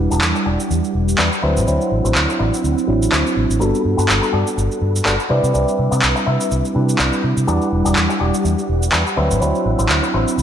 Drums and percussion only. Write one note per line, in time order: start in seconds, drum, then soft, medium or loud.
0.11 shaker medium
0.21 clap loud
0.21 shaker medium
0.36 shaker soft
0.60 shaker medium
0.71 shaker medium
0.84 shaker soft
1.09 shaker medium
1.18 clap loud
1.18 shaker soft
1.33 shaker soft
1.57 shaker medium
1.68 shaker medium
1.81 shaker soft
2.05 shaker medium
2.15 clap loud
2.15 shaker medium
2.30 shaker soft
2.54 shaker medium
2.65 shaker medium
2.78 shaker soft
3.02 shaker medium
3.12 clap loud
3.12 shaker medium
3.27 shaker soft
3.51 shaker medium
3.61 shaker medium
3.75 shaker soft
3.99 shaker medium
4.09 clap loud
4.09 shaker medium
4.23 shaker soft
4.47 shaker medium
4.58 shaker medium
4.72 shaker soft
4.96 shaker medium
5.06 clap loud
5.06 shaker medium
5.20 shaker soft
5.44 shaker medium
5.55 shaker medium
5.68 shaker soft
5.92 shaker medium
6.02 clap loud
6.02 shaker medium
6.17 shaker soft
6.41 shaker medium
6.51 shaker medium
6.65 shaker soft
6.89 shaker medium
6.99 clap loud
6.99 shaker medium
7.13 shaker soft
7.37 shaker medium
7.48 shaker medium
7.62 shaker soft
7.86 shaker medium
7.96 clap loud
7.96 shaker medium
8.10 shaker soft
8.34 shaker medium
8.45 shaker medium
8.59 shaker soft
8.83 shaker medium
8.92 clap loud
8.92 shaker medium
9.07 shaker soft
9.31 shaker medium
9.42 shaker medium
9.55 shaker soft
9.79 shaker medium
9.89 clap loud
9.89 shaker medium
10.04 shaker soft
10.28 shaker medium
10.39 shaker medium